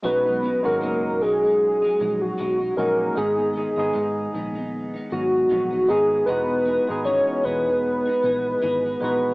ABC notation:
X:1
M:4/4
L:1/16
Q:"Swing 16ths" 1/4=77
K:B
V:1 name="Soft synth lead"
B3 A3 G4- G F3 A2 | G2 G4 z4 F4 G2 | B4 c2 B8 B2 |]
V:2 name="Tine electric piano"
[G,CDF]2 z [G,CDF]6 z4 z [G,CDF]2 | [G,B,DG]2 z [G,B,DG]6 z4 z [G,B,DG]2 | [G,B,DF]2 z [G,B,DG]6 z4 z [G,B,DF]2 |]
V:3 name="Clean electric guitar"
[B,,F,G,D] [F,G,D] [B,,F,G,D] [F,G,D] [B,,F,G,D]2 [B,,F,G,D] [F,G,D]2 [F,G,D] [F,G,D]2 [B,,F,G,D] [F,G,D] [F,G,D]2 | [G,,D,B,D] [D,B,D] [G,,D,B,D] [D,B,D] [G,,D,B,D]2 [G,,D,B,D] [D,B,D]2 [D,B,D] [G,,D,B,D]2 [G,,D,B,D] [D,B,D] [G,,D,B,D]2 | [E,B,DG]2 [E,B,DG] [B,DG] [E,B,DG]2 [E,B,DG] [B,DG]2 [B,DG] [E,B,DG]2 [E,B,DG] [B,DG] [E,B,DG]2 |]
V:4 name="Picked electric bass" clef=bass
B,,,3 G,,, F,,,2 B,,,4 A,,,2 B,,,2 A,,,2 | G,,,3 G,,, G,,2 A,,,4 G,,,2 A,,,2 G,,,2 | E,,,3 G,,,2 z E,,,4 A,,,2 G,,,2 A,,,2 |]